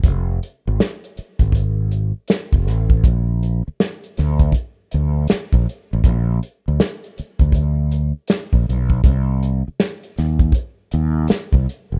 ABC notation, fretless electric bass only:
X:1
M:4/4
L:1/16
Q:"Swing 16ths" 1/4=80
K:Bbmix
V:1 name="Fretless electric bass" clef=bass
F,,,2 z A,,, z3 A,,,4 z2 F,,, =A,,,2 | B,,,3 z3 D,,2 z2 D,,2 z B,,, z =A,,, | B,,,2 z D,, z3 D,,4 z2 B,,, =B,,,2 | C,,3 z3 E,,2 z2 E,,2 z C,, z =E,,, |]